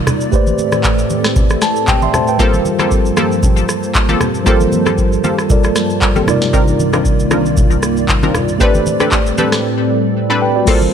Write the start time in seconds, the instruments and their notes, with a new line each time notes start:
Already playing: analog synth pad C3 A#3 D#4 F4 D5, tine electric piano D#4 F4 A#4 D5
0.07 cross-stick, low conga, shaker
0.21 shaker
0.31 analog synth pad A2 A3 C4 G4 A4, tine electric piano A3 G4 B4 C5, kick, shaker
0.35 tine electric piano D5
0.47 high conga, shaker
0.58 high conga, shaker
0.72 cross-stick, high conga, shaker
0.84 kick, clap, shaker
0.99 shaker
1.10 high conga, shaker
1.24 cross-stick, snare, shaker
1.36 kick, low conga, shaker
1.50 cross-stick, high conga, shaker
1.62 tine electric piano A5, cross-stick, snare, shaker
1.76 shaker
1.87 tine electric piano G5, kick, clap, low conga, shaker
2.02 tine electric piano E5 C6, high conga, shaker
2.14 tine electric piano C5 A5, cross-stick, low conga, shaker
2.27 tine electric piano B4 G5, shaker
2.38 analog synth pad G2 F3 A#3 C5 A5, tine electric piano G3 F4 A4 A#4, synth pluck A#3 C4 F4 G4 A4, kick, shaker
2.42 tine electric piano C5
2.54 high conga, shaker
2.65 high conga, shaker
2.79 synth pluck A#3 C4 F4 G4 A4, cross-stick, high conga, shaker
2.91 kick, shaker
3.06 shaker
3.17 synth pluck A#3 C4 F4 G4 A4, cross-stick, high conga, shaker
3.32 shaker
3.43 kick, low conga, shaker
3.57 high conga, shaker
3.69 cross-stick, shaker
3.83 shaker
3.95 kick, clap, shaker
4.09 synth pluck A#3 C4 F4 G4 A4, high conga, shaker
4.21 cross-stick, low conga, shaker
4.35 shaker
4.45 tine electric piano G3 F4 A4 A#4, synth pluck A#3 C4 F4 G4 A4, kick, shaker
4.49 tine electric piano C5
4.60 high conga, shaker
4.72 high conga, shaker
4.86 synth pluck A#3 C4 F4 G4 A4, cross-stick, high conga, shaker
4.98 kick, shaker
5.13 shaker
5.24 synth pluck A#3 C4 F4 G4 A4, high conga, shaker
5.39 cross-stick, shaker
5.49 tine electric piano G3 F4 A4 A#4 D5, kick, low conga, shaker
5.64 cross-stick, high conga, shaker
5.76 cross-stick, snare, shaker
5.90 shaker
6.01 kick, clap, shaker
6.15 synth pluck A#3 C4 F4 G4 A4, high conga, shaker
6.26 analog synth pad C2 D#3 A#3 F4 D5, tine electric piano C3 G3 D#4 F4 A#4, cross-stick, low conga, shaker
6.30 tine electric piano D5
6.42 snare, shaker
6.53 synth pluck C4 D4 D#4 F4 A#4, kick, shaker
6.68 high conga, shaker
6.80 high conga, shaker
6.93 synth pluck C4 D4 D#4 F4 A#4, cross-stick, high conga, shaker
7.05 kick, shaker
7.20 shaker
7.31 synth pluck C4 D4 D#4 F4 A#4, cross-stick, high conga, shaker
7.46 shaker
7.57 kick, low conga, shaker
7.71 high conga, shaker
7.83 cross-stick, shaker
7.97 shaker
8.08 kick, clap, shaker
8.23 synth pluck C4 D4 D#4 F4 A#4, high conga, shaker
8.35 cross-stick, low conga, shaker
8.48 shaker
8.59 analog synth pad A2 G3 C4 A4, tine electric piano A3 G4 B4 C5, synth pluck C4 D4 G4 A4 B4, kick, shaker
8.63 tine electric piano D5
8.74 high conga, shaker
8.86 high conga, shaker
9.00 synth pluck C4 D4 G4 A4 B4, cross-stick, high conga, shaker
9.12 kick, clap, shaker
9.26 shaker
9.38 synth pluck C4 D4 G4 A4 B4, high conga, shaker
9.52 cross-stick, snare, shaker
10.30 synth pluck C4 D4 G4 A4 B4, tine electric piano D5 B5
10.42 tine electric piano B4 G5
10.56 tine electric piano F#4 D5
10.65 tine electric piano G3 F4 A4 A#4, analog synth pad G3 A#3 F4 C5 D5 A5, synth pluck A#3 C4 F4 A4, kick, crash, shaker
10.70 tine electric piano C5
10.81 high conga, shaker